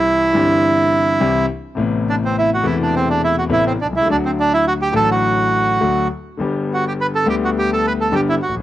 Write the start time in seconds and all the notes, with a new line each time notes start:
Already playing: C2 C3 E3 G3 C4 E4 G4
0.33 G1 G2 E3 G3 C4 G4
1.20 C2 C3 E3 G3 C4 G4
1.75 A1 A2 C3 A3 B3
1.79 E4
2.10 D4
2.25 C4
2.39 E4
2.54 F#4
2.62 E1 E2 C3 A3 B3
2.66 E4
2.82 D4
2.96 C4
3.10 D4
3.24 E4
3.38 F#4
3.49 A1 A2 C3 A3 B3 E4
3.67 C4
3.81 B1 D4
3.93 C2 E4
4.01 C#2
4.06 D2 D3 F#3 A3
4.10 D4 F#4
4.25 C4
4.40 D4
4.53 E4
4.67 F#4
4.82 G4
4.92 A1 A2 D3 F#3 A3 F#4
4.96 A4
5.11 F#4
5.81 D2 D3 F#3 A3 F#4
6.37 G1 G2 D3 G3 B3
6.41 G4
6.74 F#4
6.88 G4
7.01 B4
7.15 A4
7.26 D2 D3 G3 B3 G4
7.45 F#4
7.59 G4
7.73 A4
7.87 B4
8.01 A4
8.12 G1 G2 D3 G3 B3 G4
8.29 E4
8.42 F#4
8.49 A1
8.56 A#1